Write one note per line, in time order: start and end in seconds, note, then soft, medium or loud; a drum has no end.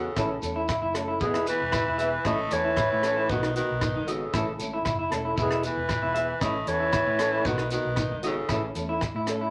0.00 0.40 C#3 medium
0.00 0.40 A4 medium
0.16 0.37 A1 medium
0.16 0.33 E3 medium
0.16 0.33 A3 medium
0.16 0.33 C#4 medium
0.16 0.28 E4 medium
0.16 0.34 A4 medium
0.16 kick medium
0.16 cross-stick medium
0.16 shekere medium
0.42 0.73 E2 medium
0.42 0.60 A3 soft
0.42 0.60 C#4 soft
0.42 0.59 A4 soft
0.42 closed hi-hat soft
0.42 shekere medium
0.56 0.67 E4 medium
0.68 0.80 E4 medium
0.68 kick medium
0.68 cross-stick medium
0.68 shekere medium
0.82 1.21 F#1 medium
0.82 0.92 E4 medium
0.94 1.12 A3 soft
0.94 1.12 C#4 medium
0.94 1.06 A4 medium
0.94 1.11 A4 medium
0.94 cross-stick medium
0.94 closed hi-hat soft
0.94 shekere medium
1.08 1.19 E4 medium
1.20 1.51 E1 medium
1.20 1.47 B2 medium
1.20 1.37 E3 medium
1.20 1.37 B3 medium
1.20 1.38 E4 medium
1.20 1.46 G#4 medium
1.20 1.38 G#4 medium
1.20 muted clean electric guitar stroke medium
1.20 kick medium
1.20 shekere medium
1.34 1.44 E4 medium
1.34 cross-stick medium
1.46 2.28 E3 medium
1.46 1.64 B3 soft
1.46 1.64 E4 soft
1.46 1.63 G#4 soft
1.46 2.28 B4 loud
1.46 closed hi-hat soft
1.46 shekere medium
1.61 1.81 E1 medium
1.72 1.84 E4 medium
1.72 kick medium
1.72 cross-stick medium
1.72 shekere medium
1.85 2.17 E1 medium
1.85 1.96 E4 medium
1.98 2.16 B3 soft
1.98 2.16 E4 soft
1.98 2.15 G#4 soft
1.98 2.10 E5 medium
1.98 closed hi-hat soft
1.98 shekere medium
2.25 2.45 A1 medium
2.25 2.41 E3 medium
2.25 2.42 A3 medium
2.25 2.55 A3 medium
2.25 2.42 C#4 medium
2.25 2.36 E4 medium
2.25 2.42 A4 medium
2.25 2.54 D#5 loud
2.25 kick medium
2.25 cross-stick medium
2.25 shekere medium
2.51 2.82 E2 medium
2.51 3.32 E3 medium
2.51 2.69 A3 soft
2.51 2.68 C#4 soft
2.51 2.67 A4 soft
2.51 3.31 C#5 loud
2.51 closed hi-hat soft
2.51 shekere medium
2.65 2.75 E4 medium
2.77 2.88 E4 medium
2.77 kick medium
2.77 cross-stick medium
2.77 shekere medium
2.90 3.31 A2 medium
2.90 3.01 E4 medium
3.03 3.20 A3 soft
3.03 3.20 C#4 soft
3.03 3.19 A4 soft
3.03 3.15 A4 medium
3.03 cross-stick medium
3.03 closed hi-hat soft
3.03 shekere medium
3.17 3.27 E4 medium
3.29 3.59 B1 medium
3.29 3.45 D#3 medium
3.29 3.56 D#3 medium
3.29 3.46 B3 medium
3.29 3.40 D#4 medium
3.29 3.46 D#4 medium
3.29 3.47 F#4 medium
3.29 3.55 B4 medium
3.29 kick medium
3.29 shekere medium
3.43 3.53 D#4 medium
3.43 cross-stick medium
3.55 4.11 D#3 medium
3.55 3.73 B3 soft
3.55 3.72 D#4 soft
3.55 3.71 F#4 soft
3.55 4.09 B4 medium
3.55 closed hi-hat soft
3.55 shekere medium
3.71 3.98 B1 medium
3.81 3.93 D#4 medium
3.81 kick medium
3.81 cross-stick medium
3.81 shekere loud
3.96 4.25 G#1 medium
3.96 4.06 D#4 medium
4.07 4.60 C#3 medium
4.07 4.25 B3 soft
4.07 4.24 D#4 soft
4.07 4.23 F#4 medium
4.07 4.59 A4 medium
4.07 4.19 D#5 medium
4.07 closed hi-hat soft
4.07 shekere medium
4.33 4.53 A1 medium
4.33 4.49 E3 medium
4.33 4.50 A3 medium
4.33 4.50 C#4 medium
4.33 4.45 E4 medium
4.33 4.50 A4 medium
4.33 kick medium
4.33 cross-stick medium
4.33 shekere medium
4.58 4.83 G#1 medium
4.58 4.76 A3 soft
4.58 4.76 C#4 soft
4.58 4.75 A4 soft
4.58 closed hi-hat soft
4.58 shekere medium
4.74 4.84 E4 medium
4.85 5.09 F#1 medium
4.85 4.96 E4 medium
4.85 kick medium
4.85 cross-stick medium
4.85 shekere medium
4.99 5.09 E4 medium
5.11 5.37 E1 medium
5.11 5.29 A3 soft
5.11 5.28 C#4 medium
5.11 5.27 A4 medium
5.11 5.22 A4 medium
5.11 cross-stick medium
5.11 closed hi-hat soft
5.11 shekere medium
5.25 5.35 E4 medium
5.36 5.68 E1 medium
5.36 5.53 E3 medium
5.36 5.54 B3 medium
5.36 5.48 E4 medium
5.36 5.54 E4 medium
5.36 5.62 G#4 medium
5.36 5.54 G#4 medium
5.36 kick medium
5.36 shekere medium
5.41 5.64 B2 medium
5.51 5.61 E4 medium
5.51 cross-stick medium
5.63 6.39 E3 medium
5.63 5.81 B3 soft
5.63 5.80 E4 soft
5.63 5.80 G#4 soft
5.63 6.39 B4 medium
5.63 closed hi-hat soft
5.63 shekere medium
5.77 5.97 E1 medium
5.89 muted clean electric guitar stroke medium
5.89 kick medium
5.89 cross-stick medium
5.89 shekere loud
6.03 6.32 E1 medium
6.03 6.13 E4 medium
6.14 6.32 B3 soft
6.14 6.32 E4 soft
6.14 6.31 G#4 soft
6.14 6.26 E5 medium
6.14 closed hi-hat soft
6.41 6.61 A1 medium
6.41 6.57 E3 medium
6.41 6.58 A3 medium
6.41 6.70 A3 medium
6.41 6.58 C#4 medium
6.41 6.53 E4 medium
6.41 6.70 D#5 medium
6.41 muted nylon-string guitar stroke medium
6.41 kick medium
6.41 cross-stick medium
6.41 shekere medium
6.67 6.97 E2 medium
6.67 7.48 E3 medium
6.67 6.84 C#4 soft
6.67 6.84 A4 medium
6.67 7.47 C#5 medium
6.67 muted nylon-string guitar stroke soft
6.67 closed hi-hat soft
6.67 shekere medium
6.80 6.91 E4 medium
6.93 7.04 E4 medium
6.93 kick medium
6.93 cross-stick medium
6.93 shekere medium
7.06 7.47 A2 medium
7.06 7.17 E4 medium
7.19 7.37 A3 soft
7.19 7.36 C#4 soft
7.19 7.35 A4 soft
7.19 7.31 A4 medium
7.19 cross-stick medium
7.19 closed hi-hat soft
7.19 shekere medium
7.32 7.43 E4 medium
7.44 7.76 B1 medium
7.44 7.62 D#3 medium
7.44 7.72 D#3 medium
7.44 7.62 B3 medium
7.44 7.56 D#4 medium
7.44 7.62 D#4 medium
7.44 7.63 F#4 medium
7.44 7.71 B4 loud
7.44 kick medium
7.44 shekere medium
7.58 7.69 D#4 medium
7.58 cross-stick medium
7.70 8.20 D#3 medium
7.70 7.89 B3 soft
7.70 7.88 D#4 soft
7.70 7.88 F#4 soft
7.70 8.20 B4 medium
7.70 closed hi-hat soft
7.70 shekere medium
7.85 8.12 B1 medium
7.96 8.09 D#4 medium
7.96 kick medium
7.96 cross-stick medium
7.96 shekere medium
8.11 8.40 G#1 medium
8.11 8.22 D#4 medium
8.23 8.73 C#3 medium
8.23 8.41 B3 soft
8.23 8.41 D#4 soft
8.23 8.39 F#4 soft
8.23 8.73 A4 medium
8.23 8.35 D#5 medium
8.23 closed hi-hat medium
8.23 shekere medium
8.49 8.69 A1 medium
8.49 8.66 E3 medium
8.49 8.66 A3 medium
8.49 8.67 C#4 medium
8.49 8.61 E4 medium
8.49 8.67 A4 medium
8.49 kick medium
8.49 cross-stick medium
8.49 shekere medium
8.75 9.06 E2 medium
8.75 8.93 C#4 soft
8.75 8.92 A4 medium
8.75 closed hi-hat soft
8.75 shekere medium
8.79 8.94 A3 soft
8.89 9.00 E4 medium
9.01 kick medium
9.01 cross-stick medium
9.01 shekere medium
9.15 9.50 A2 medium
9.15 9.26 E4 medium
9.27 9.45 A3 soft
9.27 9.44 C#4 medium
9.27 9.44 A4 medium
9.27 9.39 A4 medium
9.27 cross-stick medium
9.27 closed hi-hat soft
9.27 shekere medium
9.41 9.50 E4 medium